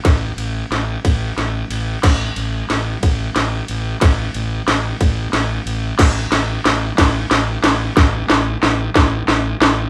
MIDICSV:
0, 0, Header, 1, 3, 480
1, 0, Start_track
1, 0, Tempo, 660066
1, 38, Time_signature, 6, 3, 24, 8
1, 7196, End_track
2, 0, Start_track
2, 0, Title_t, "Fingered electric bass"
2, 0, Program_c, 0, 33
2, 35, Note_on_c, 0, 33, 84
2, 215, Note_off_c, 0, 33, 0
2, 267, Note_on_c, 0, 33, 77
2, 450, Note_off_c, 0, 33, 0
2, 513, Note_on_c, 0, 33, 77
2, 694, Note_off_c, 0, 33, 0
2, 760, Note_on_c, 0, 33, 77
2, 939, Note_off_c, 0, 33, 0
2, 998, Note_on_c, 0, 33, 76
2, 1178, Note_off_c, 0, 33, 0
2, 1237, Note_on_c, 0, 33, 80
2, 1417, Note_off_c, 0, 33, 0
2, 1479, Note_on_c, 0, 33, 90
2, 1659, Note_off_c, 0, 33, 0
2, 1719, Note_on_c, 0, 33, 88
2, 1899, Note_off_c, 0, 33, 0
2, 1964, Note_on_c, 0, 33, 77
2, 2142, Note_off_c, 0, 33, 0
2, 2200, Note_on_c, 0, 33, 80
2, 2379, Note_off_c, 0, 33, 0
2, 2441, Note_on_c, 0, 33, 82
2, 2620, Note_off_c, 0, 33, 0
2, 2685, Note_on_c, 0, 33, 78
2, 2862, Note_off_c, 0, 33, 0
2, 2922, Note_on_c, 0, 33, 86
2, 3101, Note_off_c, 0, 33, 0
2, 3162, Note_on_c, 0, 33, 86
2, 3341, Note_off_c, 0, 33, 0
2, 3399, Note_on_c, 0, 33, 80
2, 3579, Note_off_c, 0, 33, 0
2, 3643, Note_on_c, 0, 33, 80
2, 3821, Note_off_c, 0, 33, 0
2, 3876, Note_on_c, 0, 33, 81
2, 4057, Note_off_c, 0, 33, 0
2, 4114, Note_on_c, 0, 33, 86
2, 4295, Note_off_c, 0, 33, 0
2, 4357, Note_on_c, 0, 33, 90
2, 4537, Note_off_c, 0, 33, 0
2, 4594, Note_on_c, 0, 33, 83
2, 4775, Note_off_c, 0, 33, 0
2, 4836, Note_on_c, 0, 33, 83
2, 5016, Note_off_c, 0, 33, 0
2, 5077, Note_on_c, 0, 33, 83
2, 5256, Note_off_c, 0, 33, 0
2, 5317, Note_on_c, 0, 33, 82
2, 5496, Note_off_c, 0, 33, 0
2, 5554, Note_on_c, 0, 33, 87
2, 5734, Note_off_c, 0, 33, 0
2, 5794, Note_on_c, 0, 33, 96
2, 5974, Note_off_c, 0, 33, 0
2, 6038, Note_on_c, 0, 33, 86
2, 6216, Note_off_c, 0, 33, 0
2, 6273, Note_on_c, 0, 33, 86
2, 6453, Note_off_c, 0, 33, 0
2, 6511, Note_on_c, 0, 33, 90
2, 6691, Note_off_c, 0, 33, 0
2, 6747, Note_on_c, 0, 33, 91
2, 6929, Note_off_c, 0, 33, 0
2, 6985, Note_on_c, 0, 33, 89
2, 7167, Note_off_c, 0, 33, 0
2, 7196, End_track
3, 0, Start_track
3, 0, Title_t, "Drums"
3, 35, Note_on_c, 9, 38, 56
3, 35, Note_on_c, 9, 51, 83
3, 36, Note_on_c, 9, 36, 105
3, 108, Note_off_c, 9, 38, 0
3, 108, Note_off_c, 9, 51, 0
3, 109, Note_off_c, 9, 36, 0
3, 277, Note_on_c, 9, 51, 63
3, 349, Note_off_c, 9, 51, 0
3, 523, Note_on_c, 9, 38, 50
3, 523, Note_on_c, 9, 51, 63
3, 595, Note_off_c, 9, 38, 0
3, 595, Note_off_c, 9, 51, 0
3, 761, Note_on_c, 9, 36, 66
3, 762, Note_on_c, 9, 51, 81
3, 834, Note_off_c, 9, 36, 0
3, 834, Note_off_c, 9, 51, 0
3, 1001, Note_on_c, 9, 38, 48
3, 1001, Note_on_c, 9, 51, 62
3, 1074, Note_off_c, 9, 38, 0
3, 1074, Note_off_c, 9, 51, 0
3, 1240, Note_on_c, 9, 51, 73
3, 1313, Note_off_c, 9, 51, 0
3, 1479, Note_on_c, 9, 38, 59
3, 1479, Note_on_c, 9, 49, 86
3, 1482, Note_on_c, 9, 36, 104
3, 1552, Note_off_c, 9, 38, 0
3, 1552, Note_off_c, 9, 49, 0
3, 1555, Note_off_c, 9, 36, 0
3, 1718, Note_on_c, 9, 51, 67
3, 1791, Note_off_c, 9, 51, 0
3, 1963, Note_on_c, 9, 38, 62
3, 1963, Note_on_c, 9, 51, 64
3, 2035, Note_off_c, 9, 38, 0
3, 2035, Note_off_c, 9, 51, 0
3, 2202, Note_on_c, 9, 51, 90
3, 2204, Note_on_c, 9, 36, 67
3, 2274, Note_off_c, 9, 51, 0
3, 2276, Note_off_c, 9, 36, 0
3, 2442, Note_on_c, 9, 38, 63
3, 2442, Note_on_c, 9, 51, 60
3, 2514, Note_off_c, 9, 38, 0
3, 2514, Note_off_c, 9, 51, 0
3, 2678, Note_on_c, 9, 51, 71
3, 2751, Note_off_c, 9, 51, 0
3, 2919, Note_on_c, 9, 38, 69
3, 2919, Note_on_c, 9, 51, 88
3, 2923, Note_on_c, 9, 36, 109
3, 2992, Note_off_c, 9, 38, 0
3, 2992, Note_off_c, 9, 51, 0
3, 2996, Note_off_c, 9, 36, 0
3, 3159, Note_on_c, 9, 51, 67
3, 3232, Note_off_c, 9, 51, 0
3, 3402, Note_on_c, 9, 38, 74
3, 3402, Note_on_c, 9, 51, 68
3, 3474, Note_off_c, 9, 38, 0
3, 3474, Note_off_c, 9, 51, 0
3, 3640, Note_on_c, 9, 51, 82
3, 3641, Note_on_c, 9, 36, 72
3, 3713, Note_off_c, 9, 51, 0
3, 3714, Note_off_c, 9, 36, 0
3, 3878, Note_on_c, 9, 38, 71
3, 3878, Note_on_c, 9, 51, 65
3, 3950, Note_off_c, 9, 38, 0
3, 3950, Note_off_c, 9, 51, 0
3, 4121, Note_on_c, 9, 51, 72
3, 4194, Note_off_c, 9, 51, 0
3, 4355, Note_on_c, 9, 38, 76
3, 4355, Note_on_c, 9, 57, 92
3, 4359, Note_on_c, 9, 36, 108
3, 4427, Note_off_c, 9, 38, 0
3, 4427, Note_off_c, 9, 57, 0
3, 4431, Note_off_c, 9, 36, 0
3, 4595, Note_on_c, 9, 38, 84
3, 4595, Note_on_c, 9, 51, 69
3, 4668, Note_off_c, 9, 38, 0
3, 4668, Note_off_c, 9, 51, 0
3, 4840, Note_on_c, 9, 38, 83
3, 4840, Note_on_c, 9, 51, 71
3, 4912, Note_off_c, 9, 38, 0
3, 4912, Note_off_c, 9, 51, 0
3, 5077, Note_on_c, 9, 36, 70
3, 5078, Note_on_c, 9, 38, 86
3, 5078, Note_on_c, 9, 51, 90
3, 5150, Note_off_c, 9, 36, 0
3, 5151, Note_off_c, 9, 38, 0
3, 5151, Note_off_c, 9, 51, 0
3, 5316, Note_on_c, 9, 38, 81
3, 5316, Note_on_c, 9, 51, 68
3, 5389, Note_off_c, 9, 38, 0
3, 5389, Note_off_c, 9, 51, 0
3, 5554, Note_on_c, 9, 38, 86
3, 5554, Note_on_c, 9, 51, 74
3, 5626, Note_off_c, 9, 38, 0
3, 5626, Note_off_c, 9, 51, 0
3, 5794, Note_on_c, 9, 36, 111
3, 5795, Note_on_c, 9, 38, 83
3, 5867, Note_off_c, 9, 36, 0
3, 5868, Note_off_c, 9, 38, 0
3, 6033, Note_on_c, 9, 38, 92
3, 6106, Note_off_c, 9, 38, 0
3, 6274, Note_on_c, 9, 38, 93
3, 6347, Note_off_c, 9, 38, 0
3, 6512, Note_on_c, 9, 36, 81
3, 6512, Note_on_c, 9, 38, 89
3, 6585, Note_off_c, 9, 36, 0
3, 6585, Note_off_c, 9, 38, 0
3, 6751, Note_on_c, 9, 38, 87
3, 6824, Note_off_c, 9, 38, 0
3, 6993, Note_on_c, 9, 38, 102
3, 7066, Note_off_c, 9, 38, 0
3, 7196, End_track
0, 0, End_of_file